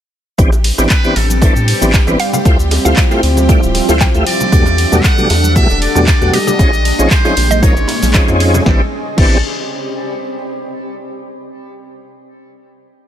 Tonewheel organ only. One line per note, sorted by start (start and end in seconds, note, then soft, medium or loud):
0.38 0.50 E3 medium
0.38 0.50 B3 medium
0.38 0.51 C4 medium
0.38 0.51 D4 medium
0.38 0.51 G4 loud
0.78 0.88 E3 medium
0.78 0.88 B3 medium
0.78 0.89 C4 medium
0.78 0.89 D4 medium
0.78 0.89 G4 loud
1.04 1.14 E3 medium
1.04 1.14 B3 medium
1.04 1.14 C4 medium
1.04 1.15 D4 medium
1.04 1.15 G4 medium
1.42 1.54 E3 medium
1.42 1.54 B3 medium
1.42 1.54 C4 medium
1.42 1.54 D4 medium
1.42 1.54 A4 loud
1.81 1.92 E3 medium
1.81 1.92 B3 medium
1.81 1.92 C4 medium
1.81 1.92 D4 medium
1.81 1.92 G4 loud
2.07 2.18 E3 medium
2.07 2.18 B3 medium
2.07 2.18 C4 medium
2.07 2.18 D4 medium
2.07 2.18 B4 medium
2.45 2.57 A3 loud
2.45 2.57 E4 medium
2.45 2.57 F4 medium
2.45 2.58 G4 medium
2.45 2.58 C5 loud
2.85 2.95 A3 loud
2.85 2.95 E4 medium
2.85 2.96 F4 medium
2.85 2.96 G4 medium
2.85 2.96 C5 loud
3.11 3.21 A3 medium
3.11 3.21 E4 medium
3.11 3.21 F4 medium
3.11 3.21 G4 medium
3.11 3.22 C5 loud
3.49 3.61 A3 loud
3.49 3.61 E4 medium
3.49 3.61 F4 medium
3.49 3.61 G4 medium
3.49 3.61 D5 loud
3.88 3.99 A3 loud
3.88 3.99 E4 medium
3.88 3.99 F4 medium
3.88 3.99 G4 medium
3.88 3.99 C5 loud
4.14 4.25 A3 medium
4.14 4.25 E4 medium
4.14 4.25 F4 medium
4.14 4.25 G4 medium
4.14 4.25 E5 medium
4.52 4.64 B2 loud
4.52 4.64 F#3 medium
4.52 4.64 G3 medium
4.52 4.64 A3 medium
4.52 4.65 D4 loud
4.92 5.02 B2 loud
4.92 5.02 F#3 medium
4.92 5.02 G3 medium
4.92 5.03 A3 medium
4.92 5.03 D4 loud
5.18 5.28 B2 medium
5.18 5.28 F#3 medium
5.18 5.28 G3 medium
5.18 5.28 A3 medium
5.18 5.28 D4 medium
5.55 5.68 B2 loud
5.55 5.68 F#3 medium
5.55 5.68 G3 medium
5.55 5.68 A3 medium
5.55 5.68 E4 loud
5.95 6.06 B2 loud
5.95 6.06 F#3 medium
5.95 6.06 G3 medium
5.95 6.06 A3 medium
5.95 6.06 D4 loud
6.21 6.38 B2 medium
6.21 6.38 F#3 medium
6.21 6.39 G3 medium
6.21 6.39 A3 medium
6.21 6.39 F#4 medium
6.59 6.71 F3 loud
6.59 6.71 C4 medium
6.59 6.71 C#4 medium
6.59 6.71 D#4 medium
6.59 6.71 G#4 loud
6.99 7.09 F3 loud
6.99 7.09 C4 medium
6.99 7.09 C#4 medium
6.99 7.09 D#4 medium
6.99 7.09 G#4 loud
7.24 7.35 F3 medium
7.24 7.35 C4 medium
7.24 7.35 C#4 medium
7.24 7.35 D#4 medium
7.24 7.35 G#4 medium
7.62 7.74 F3 medium
7.62 7.74 C4 medium
7.62 7.75 C#4 medium
7.62 7.75 D#4 medium
7.62 7.75 A#4 loud
8.14 8.63 F3 medium
8.14 8.63 C4 medium
8.14 8.63 C#4 medium
8.14 8.63 D#4 medium
8.14 8.63 G#4 medium
8.65 8.81 E3 medium
8.65 8.81 B3 medium
8.65 8.81 C4 medium
8.65 8.82 D4 medium
8.65 8.82 G4 medium
9.17 9.37 E3 medium
9.17 9.37 B3 medium
9.17 9.37 C4 medium
9.17 9.38 D4 medium
9.17 9.38 G4 loud